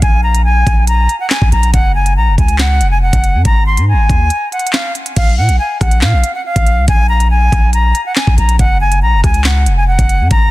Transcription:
0.02 808-style bass A#1, flute G#5, kick, closed hi-hat
0.23 flute A#5
0.35 closed hi-hat
0.45 flute G#5
0.67 808-style bass A#1, kick, closed hi-hat
0.87 flute A#5, closed hi-hat
1.09 closed hi-hat
1.20 flute F#5
1.30 flute G#5, snare, clap
1.42 808-style bass A#1, kick
1.52 808-style bass A#1, flute A#5, closed hi-hat
1.63 closed hi-hat
1.73 808-style bass F#1, flute F#5, kick, closed hi-hat
1.95 flute G#5
2.06 closed hi-hat
2.17 808-style bass A#1, flute A#5
2.27 808-style bass F#1
2.38 808-style bass C#2, flute G#5, kick, closed hi-hat
2.48 closed hi-hat
2.59 flute F#5, snare, clap
2.81 808-style bass F1, closed hi-hat
2.91 flute G#5
3.02 flute F#5
3.13 808-style bass F#1, kick, closed hi-hat
3.24 closed hi-hat
3.34 808-style bass F#2
3.45 808-style bass G#1, flute A#5, kick, closed hi-hat
3.66 flute C6
3.77 808-style bass G#2, closed hi-hat
3.88 flute G#5
3.93 808-style bass G#1
4.09 808-style bass D#2, kick, closed hi-hat
4.30 closed hi-hat
4.52 flute F#5, closed hi-hat
4.59 closed hi-hat
4.67 closed hi-hat
4.73 flute F5, snare, clap
4.95 closed hi-hat
5.06 closed hi-hat
5.16 808-style bass A#1, flute F5, kick, closed hi-hat, crash
5.38 808-style bass A#2, flute F#5
5.49 808-style bass A#1, closed hi-hat
5.59 flute G#5
5.81 808-style bass A#1, flute F#5, kick, cross-stick, closed hi-hat
5.91 closed hi-hat
6.01 808-style bass A#2, flute F5, snare, clap
6.13 808-style bass A#1
6.24 closed hi-hat
6.35 flute F#5
6.45 flute F5
6.56 808-style bass A#1, kick, closed hi-hat
6.67 closed hi-hat
6.77 808-style bass C2
6.88 808-style bass A#1, flute G#5, kick, closed hi-hat
7.09 flute A#5
7.20 closed hi-hat
7.30 flute G#5
7.52 808-style bass A#1, kick, closed hi-hat
7.73 flute A#5, closed hi-hat
7.95 closed hi-hat
8.06 flute F#5
8.16 flute G#5, snare, clap
8.27 808-style bass A#1, kick
8.38 808-style bass A#1, flute A#5, closed hi-hat
8.49 closed hi-hat
8.59 808-style bass F#1, flute F#5, kick, closed hi-hat
8.81 flute G#5
8.92 closed hi-hat
9.02 808-style bass A#1, flute A#5
9.13 808-style bass F#1
9.24 808-style bass C#2, flute G#5, kick, cross-stick, closed hi-hat
9.34 closed hi-hat
9.44 flute F#5, snare, clap
9.66 808-style bass F1, closed hi-hat
9.77 flute G#5
9.88 flute F#5
9.99 808-style bass F#1, kick, closed hi-hat
10.09 closed hi-hat
10.20 808-style bass F#2
10.31 808-style bass G#1, flute A#5, kick, closed hi-hat

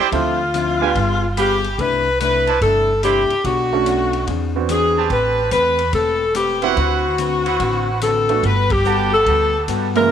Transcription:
Already playing: saxophone section G4
0.12 upright bass D2, hollow-body jazz guitar D3 F3 C4 E4, upright piano C4 E4 F4 A4, saxophone section F4, kick, ride
0.54 hollow-body jazz guitar D3 F3 C4 E4, hi-hat pedal, ride
0.81 upright piano B3 D4 F4 G4, trumpet section G4 B4 F5 G#5
0.95 upright bass G1, hollow-body jazz guitar G3 B3 F4 G#4, kick, ride
1.37 hollow-body jazz guitar G3 B3 F4 G#4, trumpet section G4 B4 F5 B5, saxophone section G4, hi-hat pedal, ride
1.64 ride
1.78 upright bass C2, hollow-body jazz guitar C3 A3 D4 E4, saxophone section B4, kick, ride
2.20 hollow-body jazz guitar C3 A3 D4 E4, saxophone section B4, hi-hat pedal, ride
2.47 trumpet section E4 C5 D5 A5, ride
2.61 upright bass G1, hollow-body jazz guitar C3 A3 D4, saxophone section A4, kick, ride
2.66 hollow-body jazz guitar E4
3.03 hollow-body jazz guitar C3 A3 D4 E4, trumpet section E4 C5 D5 B5, saxophone section G4, hi-hat pedal, ride
3.30 muted upright bass stroke, ride
3.44 upright bass B1, hollow-body jazz guitar B3 D4 A4 C#5, saxophone section F#4, kick, ride
3.73 upright piano A3 C#4 D4 F#4
3.86 hollow-body jazz guitar B3 D4 A4 C#5, hi-hat pedal, ride
4.13 ride
4.27 upright bass E2, hollow-body jazz guitar E3 C4 D4 G#4, kick, ride
4.56 upright piano B3 C4 D4 F#4
4.69 hollow-body jazz guitar E3 C4 D4 G#4, saxophone section G#4, hi-hat pedal, ride
4.96 trumpet section C4 G4 B4 A5
5.10 upright bass A1, hollow-body jazz guitar A3 C4 G4 B4, saxophone section B4, kick, ride
5.51 upright bass E2, hollow-body jazz guitar A3 C4 G4 B4, saxophone section B4, hi-hat pedal, ride
5.79 ride
5.93 upright bass E1, hollow-body jazz guitar A3 C4 G4 B4, saxophone section A4, kick, ride
6.35 hollow-body jazz guitar A3 C4 G4 B4, saxophone section G4, hi-hat pedal, ride
6.62 upright piano B3 C4 E4 F#4, trumpet section E4 B4 C5 F#5, ride
6.76 upright bass D2, hollow-body jazz guitar D3 C4 F#4 B4, saxophone section F#4, kick, ride
7.18 hollow-body jazz guitar D3 C4 F#4 B4, hi-hat pedal, ride
7.45 trumpet section E4 B4 C5 F#5, ride
7.60 upright bass A1, hollow-body jazz guitar D3 C4 F#4 B4, kick, ride
8.01 hollow-body jazz guitar D3 C4 F#4 B4, saxophone section A4, hi-hat pedal, ride
8.29 upright piano A3 B3 D4 F#4, ride
8.43 upright bass G1, hollow-body jazz guitar G3 B3 F#4 A4, saxophone section B4, kick, ride
8.70 saxophone section G4, kick, ride
8.85 hollow-body jazz guitar G3 B3 F#4 A4, trumpet section G4 B4 F#5 A5, hi-hat pedal
9.14 saxophone section A4
9.26 upright bass D2, hollow-body jazz guitar G3 B3 F#4 A4, trumpet section G4 B4 F#5 A5, kick, ride
9.68 upright bass G2, hollow-body jazz guitar G3 B3 F#4 A4, hi-hat pedal, ride
9.95 upright piano F#2 G#3 A#3 C#4 E4, trombone section C#3 E3 A#3, saxophone section A#4, ride

